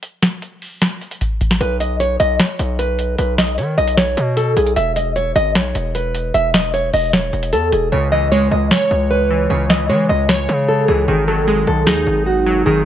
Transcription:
0.03 closed hi-hat medium
0.22 snare loud
0.22 closed hi-hat medium
0.42 closed hi-hat medium
0.62 open hi-hat medium
0.82 snare loud
0.82 closed hi-hat medium
1.01 closed hi-hat soft
1.11 closed hi-hat medium
1.21 kick medium
1.21 closed hi-hat medium
1.41 kick medium
1.41 closed hi-hat medium
1.51 snare medium
1.61 2.17 B1 loud
1.61 1.76 B4 medium
1.61 closed hi-hat medium
1.80 1.96 D#5 medium
1.80 closed hi-hat medium
2.00 2.15 C#5 medium
2.00 closed hi-hat medium
2.20 2.39 B1 loud
2.20 2.35 D#5 medium
2.20 closed hi-hat medium
2.40 2.77 C#5 medium
2.40 snare loud
2.40 closed hi-hat medium
2.59 3.16 B1 loud
2.59 closed hi-hat medium
2.79 3.16 B4 medium
2.79 closed hi-hat medium
2.99 closed hi-hat medium
3.18 3.60 B1 loud
3.18 3.34 B4 medium
3.18 closed hi-hat medium
3.38 3.54 D#5 medium
3.38 snare loud
3.38 closed hi-hat medium
3.58 3.77 D#3 loud
3.58 3.73 C#5 medium
3.58 closed hi-hat medium
3.78 4.16 B1 loud
3.78 3.93 D#5 medium
3.78 closed hi-hat soft
3.88 closed hi-hat medium
3.97 4.35 C#5 medium
3.97 snare loud
3.97 closed hi-hat medium
4.17 4.55 B2 loud
4.17 closed hi-hat medium
4.37 4.52 A4 medium
4.37 closed hi-hat medium
4.57 4.76 B1 loud
4.57 4.72 G#4 medium
4.57 closed hi-hat medium
4.67 closed hi-hat soft
4.76 5.33 E1 loud
4.76 4.92 E5 medium
4.76 closed hi-hat medium
4.96 5.11 D#5 medium
4.96 closed hi-hat medium
5.16 5.31 C#5 medium
5.16 closed hi-hat medium
5.36 5.57 G#1 loud
5.36 5.51 D#5 medium
5.36 closed hi-hat medium
5.55 5.74 B1 loud
5.55 5.92 C#5 medium
5.55 snare loud
5.55 closed hi-hat medium
5.75 6.32 E1 loud
5.75 closed hi-hat medium
5.95 6.32 B4 medium
5.95 closed hi-hat medium
6.15 closed hi-hat medium
6.34 6.91 E1 loud
6.34 6.50 E5 medium
6.34 closed hi-hat medium
6.54 6.69 D#5 medium
6.54 snare loud
6.54 closed hi-hat medium
6.74 6.89 C#5 medium
6.74 closed hi-hat medium
6.93 7.31 E1 loud
6.93 7.09 D#5 medium
6.93 open hi-hat medium
7.13 7.50 C#5 medium
7.13 snare loud
7.13 closed hi-hat medium
7.33 7.54 E1 loud
7.33 closed hi-hat medium
7.43 closed hi-hat medium
7.53 7.71 E2 loud
7.53 7.68 A4 medium
7.53 closed hi-hat medium
7.72 7.91 E1 loud
7.72 7.88 G#4 medium
7.72 closed hi-hat medium
7.92 8.49 C#2 loud
7.92 8.91 C#3 medium
7.92 8.08 C#5 medium
8.12 9.11 E3 medium
8.12 8.27 D#5 medium
8.32 9.30 G#3 medium
8.32 8.47 C#5 medium
8.51 8.70 C#2 loud
8.51 8.67 D#5 medium
8.71 9.08 C#5 medium
8.71 9.70 C#5 medium
8.71 snare loud
8.91 9.48 C#2 loud
9.11 9.48 B4 medium
9.30 9.68 E3 medium
9.50 9.91 C#2 loud
9.50 10.49 C#3 medium
9.50 9.65 C#5 medium
9.70 10.68 E3 medium
9.70 9.85 D#5 medium
9.70 snare loud
9.89 10.08 E3 loud
9.89 10.88 G#3 medium
9.89 10.05 C#5 medium
10.09 10.47 C#2 loud
10.09 10.25 D#5 medium
10.29 10.66 C#5 medium
10.29 11.08 C#5 loud
10.29 snare loud
10.49 10.87 C#3 loud
10.68 10.84 A4 medium
10.88 11.07 C#2 loud
10.88 11.08 E3 medium
10.88 11.04 G#4 medium
11.08 11.65 G#1 loud
11.08 12.07 D#3 loud
11.08 11.23 G#4 medium
11.28 12.26 F#3 medium
11.28 11.43 A4 medium
11.47 12.46 G#3 medium
11.47 11.63 G#4 medium
11.67 11.88 B1 loud
11.67 11.83 A4 medium
11.87 12.06 D#2 loud
11.87 12.85 D#4 loud
11.87 12.24 G#4 medium
11.87 snare loud
12.07 12.64 G#1 loud
12.26 12.63 F#4 medium
12.46 12.84 F#3 medium
12.66 12.85 G#1 loud
12.66 12.85 D#3 loud
12.66 12.81 G#4 medium

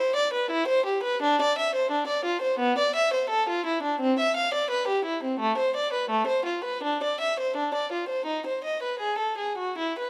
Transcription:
0.00 0.16 C5 medium
0.16 0.33 D5 medium
0.33 0.50 B4 medium
0.50 0.68 E4 medium
0.68 0.85 C5 medium
0.86 1.04 G4 medium
1.03 1.22 B4 medium
1.23 1.40 D4 medium
1.42 1.59 D5 medium
1.58 1.75 E5 medium
1.75 1.92 C5 medium
1.91 2.08 D4 medium
2.07 2.25 D5 medium
2.25 2.43 F4 medium
2.42 2.60 C5 medium
2.59 2.77 B3 medium
2.78 2.96 D5 medium
2.96 3.13 E5 medium
3.14 3.31 C5 medium
3.30 3.48 A4 medium
3.49 3.66 F4 medium
3.66 3.83 E4 medium
3.83 4.00 D4 medium
4.00 4.18 C4 medium
4.19 4.36 E5 medium
4.37 4.53 F5 medium
4.54 4.71 D5 medium
4.71 4.88 B4 medium
4.88 5.05 G4 medium
5.05 5.22 E4 medium
5.23 5.40 C4 soft
5.40 5.57 A3 medium
5.58 5.75 C5 medium
5.76 5.93 D5 medium
5.93 6.10 B4 medium
6.10 6.27 A3 medium
6.27 6.45 C5 medium
6.46 6.64 F4 soft
6.64 6.82 B4 medium
6.83 7.01 D4 medium
7.03 7.20 D5 medium
7.21 7.38 E5 medium
7.40 7.56 C5 medium
7.57 7.73 D4 medium
7.74 7.91 D5 soft
7.92 8.09 F4 soft
8.09 8.26 C5 soft
8.26 8.44 D#4 medium
8.47 8.63 C5 soft
8.64 8.82 D#5 soft
8.83 9.00 B4 soft
8.99 9.18 G#4 soft
9.18 9.37 A4 soft
9.38 9.57 G#4 soft
9.58 9.77 F#4 soft
9.78 9.97 E4 medium
9.99 10.10 B4 soft

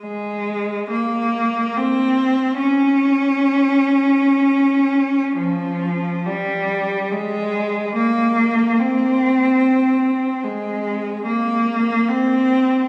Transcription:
0.01 0.87 G#3 soft
0.91 1.76 A#3 soft
1.76 2.59 C4 medium
2.58 5.32 C#4 medium
5.36 6.23 F3 medium
6.26 7.11 G3 medium
7.11 7.96 G#3 medium
7.95 8.79 A#3 medium
8.80 10.45 C4 medium
10.44 11.28 G#3 medium
11.26 12.07 A#3 medium
12.09 12.88 C4 medium

